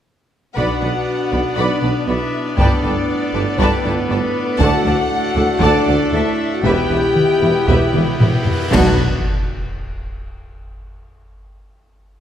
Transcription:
0.55 B1 B2 B3 D4 F#4 B4 D5 F#5 B5, taiko
0.81 B1 B2 B4 D5 F#5 B5
1.32 B1 B2 B4 D5 F#5 B5, taiko
1.56 B1 B2 D4 B4 D5 F#5 B5
1.82 B1 B2 B4 D5 F#5 B5
2.07 B1 B2 E4 B4 D5 E5 F#5 B5
2.46 D4 D5
2.56 G1 G2 A2 B3 D4 A4 B4 D5 G5 A5, taiko
2.82 G1 G2 B4 D5 G5 A5
3.33 G1 G2 B4 D5 G5 A5
3.58 G1 G2 B3 B4 D5 G5 A5, taiko
3.84 G1 G2 B4 D5 G5 A5
4.09 G1 G2 B3 B4 D5 G5 A5
4.59 D2 A3 D4 F#4 A4 D5 F#5 A5, taiko
4.85 D2 A4 D5 F#5 A5
5.36 D2 A4 D5 F#5 A5
5.60 D2 D4 A4 D5 F#5 A5, taiko
5.87 D2 A4 D5 F#5 A5
6.12 D2 E4 A4 D5 E5 F#5 A5
6.52 F#4 F#5
6.63 E1 E2 B2 B3 E4 G4 B4 E5 G5, taiko, cymbal swell
6.89 E1 E2 G4 B4 E5
7.16 taiko mid
7.42 E1 E2 G4 B4 E5
7.67 E1 E2 G4 B4 E5, taiko
7.94 E1 E2 G4 B4 E5, taiko mid
8.20 E1 E2 G4 B4 E5, taiko low-mid
8.46 taiko low
8.72 B1 B2 F#3 B3 D4 F#4 B4, concert bass drum, taiko, crash, sub drop

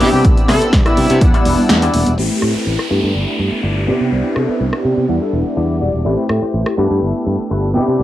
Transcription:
Already playing: E6
0.00 C3 B3 C4 D4 E4 G4 B4 D5 B5, open hi-hat, high conga
0.13 C3 G4, tambourine, low conga
0.25 C2, kick, closed hi-hat, tambourine
0.37 closed hi-hat, tambourine
0.48 C3 E4 A4 B4 E5, cross-stick, snare, open hi-hat, high conga
0.62 muted fingered electric bass stroke, closed hi-hat, tambourine
0.73 C2, muted clean electric guitar stroke, kick, snare, closed hi-hat, tambourine
0.86 E4 B4 D5, cross-stick, closed hi-hat, tambourine, high conga
0.97 C3, open hi-hat, low conga
1.09 C3, muted clean electric guitar stroke, closed hi-hat, tambourine
1.21 E2 G3 B3 D4 E4 F#5, kick, closed hi-hat, tambourine, high conga
1.34 E4 G4 D5, closed hi-hat, tambourine
1.45 E1, open hi-hat, low conga
1.58 muted fingered electric bass stroke, tambourine, high conga
1.69 E2, snare, closed hi-hat, tambourine
1.82 E4 G4 D5, closed hi-hat, tambourine
1.94 E1, open hi-hat, high conga
2.07 E1, closed hi-hat, tambourine, low conga
2.18 A1 A3 C4 E4 G4 B4 G5, crash, downlifter
2.42 A2, cross-stick
2.55 C4 G4 B4, muted fingered electric bass stroke
2.67 A1
2.79 cross-stick
2.90 G2 A3 B3 D4 E4 G4 A4 B4 A5 E6
3.04 G2
3.15 G1
3.39 G2
3.52 muted fingered electric bass stroke
3.63 G1 E4 A4 D5
3.87 C3 B3 C4 D4 E4 G4 B4 D5 B5
4.01 C3 G4
4.12 C2
4.36 C3 A4, cross-stick
4.48 E4 B4 E5, muted fingered electric bass stroke
4.61 C2
4.73 cross-stick
4.84 C3, muted clean electric guitar stroke
4.97 C3, muted clean electric guitar stroke
5.08 E2 G3 B3 D4 E4 F#5, muted clean electric guitar stroke
5.22 A4
5.33 E1
5.46 muted fingered electric bass stroke
5.56 E2 E4 G4 D5
5.81 E1 D5
5.94 E1, muted clean electric guitar stroke
6.05 A1 A3 C4 E4 G4 B4 G5
6.29 A2, cross-stick
6.42 C4 G4 C5, muted fingered electric bass stroke
6.54 A1
6.66 cross-stick
6.77 G2 A3 B3 D4 E4 G4 A4 B4 A5 E6
6.91 G2
7.02 G1
7.27 G2
7.39 muted fingered electric bass stroke
7.51 G1 E4 A4 B4
7.74 C3 B3 C4 D4 E4 G4 B4 D5 B5 E6
7.88 C3 G4
7.99 C2

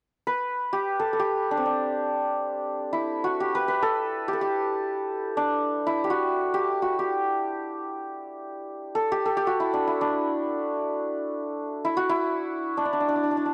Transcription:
0.27 B4
0.73 G4
0.99 A4
1.13 A4
1.19 G4
1.51 D4
1.57 C4
1.66 D4
2.93 E4
3.24 F#4
3.40 G4
3.55 B4
3.68 B4
3.83 A4
4.28 G4
4.33 A4
4.41 G4
5.37 D4
5.87 E4
6.04 G4
6.10 F#4
6.54 G4
6.82 F#4
6.99 G4
8.95 A4
9.12 G4
9.26 A4
9.37 G4
9.47 F#4
9.60 E4
9.74 D4
9.87 E4
10.01 D4
11.85 E4
11.97 F#4
12.09 E4
12.77 D4
12.85 D4
12.93 D4
13.00 D4
13.09 D4
13.16 D4
13.23 D4
13.31 D4
13.37 D4
13.46 D4

